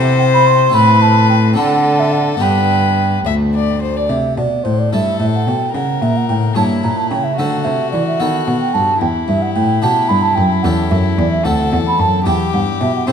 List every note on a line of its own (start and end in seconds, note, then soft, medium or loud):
0.00 0.70 C3 medium
0.00 0.73 C3 medium
0.00 0.69 C4 medium
0.00 0.70 E4 medium
0.00 0.71 G4 medium
0.00 0.74 C5 medium
0.19 0.25 G5 medium
0.33 0.48 B5 medium
0.46 0.76 C6 medium
0.70 1.52 C4 medium
0.70 1.53 E4 soft
0.70 1.54 A4 medium
0.74 1.59 A2 medium
0.74 1.53 A2 medium
0.74 1.56 B4 medium
0.74 1.03 B5 loud
1.02 1.28 A5 medium
1.29 1.35 G5 medium
1.54 2.40 D3 medium
1.54 2.37 C4 soft
1.54 2.37 D4 soft
1.54 2.38 A4 soft
1.54 2.43 A4 medium
1.54 2.01 F#5 medium
1.58 2.37 D3 medium
1.99 2.13 E5 medium
2.11 2.39 F#5 medium
2.37 3.23 G2 medium
2.37 4.04 B3 soft
2.37 4.04 D4 soft
2.37 4.05 G4 soft
2.37 3.23 G5 medium
2.41 3.21 G2 soft
2.41 3.20 B4 medium
3.25 4.05 D2 soft
3.25 4.08 D2 medium
3.25 3.34 E5 medium
3.55 3.82 D5 medium
3.82 3.98 C5 medium
3.96 4.10 D5 medium
4.09 4.34 C3 soft
4.09 4.35 C3 medium
4.09 4.36 E5 medium
4.36 4.63 B2 medium
4.36 4.62 B2 soft
4.36 4.65 D5 medium
4.63 4.90 A2 medium
4.63 4.89 A2 soft
4.63 4.80 C5 medium
4.79 4.92 D5 medium
4.92 5.18 G2 soft
4.92 5.17 G2 soft
4.92 5.52 A3 soft
4.92 5.52 E4 soft
4.92 5.71 A4 medium
4.92 5.52 A4 soft
4.92 5.19 E5 medium
5.19 5.45 A2 medium
5.19 5.44 A2 soft
5.19 5.25 E5 medium
5.35 5.49 F#5 medium
5.47 5.72 B2 medium
5.47 5.72 B2 soft
5.47 5.74 G5 medium
5.74 6.00 C#3 medium
5.74 5.99 C#3 soft
5.74 6.58 A#4 medium
5.74 6.03 F#5 medium
6.02 6.27 A#2 soft
6.02 6.18 E5 medium
6.17 6.28 F#5 medium
6.29 6.54 A2 medium
6.29 6.54 A2 soft
6.29 6.35 G5 medium
6.55 6.81 G2 soft
6.55 6.82 G2 medium
6.55 7.15 A#3 soft
6.55 7.15 E4 soft
6.55 7.37 E4 medium
6.55 7.15 C#5 soft
6.55 6.62 A5 medium
6.83 7.08 A#2 soft
6.83 7.09 A#2 medium
6.83 6.99 A#5 medium
6.97 7.09 A5 medium
7.10 7.36 C#3 soft
7.10 7.37 C#3 medium
7.10 7.25 G5 medium
7.24 7.39 E5 medium
7.37 7.63 D3 soft
7.37 7.64 D3 medium
7.37 7.89 A3 soft
7.37 8.98 F#4 medium
7.37 8.16 A4 soft
7.37 8.17 C5 soft
7.37 7.65 F#5 medium
7.64 7.89 C3 soft
7.64 7.91 C3 medium
7.64 7.90 E5 medium
7.91 8.17 E3 soft
7.91 8.19 E3 medium
7.91 8.05 D5 medium
8.06 8.21 E5 medium
8.20 8.44 D#3 soft
8.20 8.46 D#3 medium
8.20 8.97 B3 soft
8.20 8.97 A4 soft
8.20 8.98 B4 soft
8.20 8.46 F#5 medium
8.46 8.72 B2 medium
8.46 8.72 B2 soft
8.46 8.60 F#5 medium
8.60 8.75 G5 medium
8.73 9.00 G2 medium
8.73 8.99 G2 soft
8.73 9.00 A5 medium
9.00 9.26 E2 soft
9.00 9.27 E2 medium
9.00 11.45 E4 medium
9.00 9.07 G5 medium
9.27 9.53 G2 soft
9.27 9.54 G2 medium
9.27 9.43 E5 medium
9.42 9.53 F#5 medium
9.54 9.80 A2 soft
9.54 9.81 A2 medium
9.54 9.81 G5 medium
9.82 10.07 B2 soft
9.82 10.08 B2 medium
9.82 10.21 B3 soft
9.82 10.41 G4 soft
9.82 10.41 B4 soft
9.82 10.10 A5 medium
10.08 10.34 G2 soft
10.08 10.35 G2 medium
10.08 10.24 B5 medium
10.22 10.36 A5 medium
10.35 10.62 F#2 medium
10.35 10.62 F#2 soft
10.35 10.49 G5 medium
10.62 10.89 E2 medium
10.62 10.88 E2 soft
10.62 11.41 C#4 soft
10.62 11.41 G4 soft
10.62 11.42 A4 soft
10.62 10.68 F#5 medium
10.89 11.15 F#2 soft
10.89 11.16 F#2 medium
10.89 10.96 E5 medium
11.17 11.43 E2 medium
11.17 11.31 D5 medium
11.31 11.46 E5 medium
11.44 11.69 D2 soft
11.44 11.70 D2 medium
11.44 12.22 C4 soft
11.44 12.22 F#4 soft
11.44 12.24 A4 medium
11.44 12.23 A4 soft
11.44 11.72 F#5 medium
11.72 11.96 E2 medium
11.72 11.97 E2 medium
11.72 11.78 F#5 medium
11.87 12.01 B5 medium
11.99 12.23 F#2 soft
11.99 12.25 F#2 medium
11.99 12.26 A5 medium
12.25 12.50 E2 soft
12.25 12.51 E2 medium
12.25 13.03 B3 soft
12.25 13.03 E4 soft
12.25 13.09 G4 medium
12.25 13.04 G4 soft
12.25 12.33 G5 medium
12.53 12.78 G2 soft
12.53 12.79 G2 medium
12.53 12.60 F#5 medium
12.81 13.06 B2 medium
12.81 13.05 B2 soft
12.81 12.94 E5 medium
12.95 13.06 F#5 medium
13.07 13.12 C3 medium
13.07 13.12 C4 soft
13.07 13.12 E4 soft
13.07 13.12 G4 soft
13.07 13.12 C5 medium
13.07 13.12 G5 medium